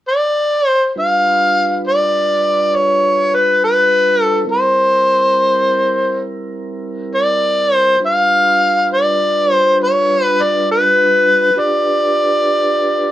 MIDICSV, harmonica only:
0, 0, Header, 1, 2, 480
1, 0, Start_track
1, 0, Tempo, 589333
1, 761, Time_signature, 12, 3, 24, 8
1, 10683, End_track
2, 0, Start_track
2, 0, Title_t, "Harmonica"
2, 0, Program_c, 0, 22
2, 70, Note_on_c, 0, 74, 82
2, 550, Note_off_c, 0, 74, 0
2, 550, Note_on_c, 0, 72, 82
2, 743, Note_off_c, 0, 72, 0
2, 810, Note_on_c, 0, 77, 95
2, 1473, Note_off_c, 0, 77, 0
2, 1526, Note_on_c, 0, 74, 85
2, 2242, Note_on_c, 0, 73, 76
2, 2255, Note_off_c, 0, 74, 0
2, 2727, Note_on_c, 0, 71, 71
2, 2739, Note_off_c, 0, 73, 0
2, 2944, Note_off_c, 0, 71, 0
2, 2965, Note_on_c, 0, 71, 70
2, 3446, Note_off_c, 0, 71, 0
2, 3446, Note_on_c, 0, 69, 70
2, 3631, Note_off_c, 0, 69, 0
2, 3679, Note_on_c, 0, 72, 77
2, 5068, Note_off_c, 0, 72, 0
2, 5824, Note_on_c, 0, 74, 81
2, 6312, Note_off_c, 0, 74, 0
2, 6312, Note_on_c, 0, 72, 81
2, 6501, Note_off_c, 0, 72, 0
2, 6565, Note_on_c, 0, 77, 96
2, 7231, Note_off_c, 0, 77, 0
2, 7283, Note_on_c, 0, 74, 86
2, 7763, Note_off_c, 0, 74, 0
2, 7763, Note_on_c, 0, 72, 86
2, 7950, Note_off_c, 0, 72, 0
2, 8011, Note_on_c, 0, 73, 82
2, 8337, Note_off_c, 0, 73, 0
2, 8337, Note_on_c, 0, 71, 82
2, 8488, Note_on_c, 0, 74, 77
2, 8500, Note_off_c, 0, 71, 0
2, 8706, Note_off_c, 0, 74, 0
2, 8727, Note_on_c, 0, 71, 69
2, 9443, Note_on_c, 0, 74, 84
2, 9455, Note_off_c, 0, 71, 0
2, 10683, Note_off_c, 0, 74, 0
2, 10683, End_track
0, 0, End_of_file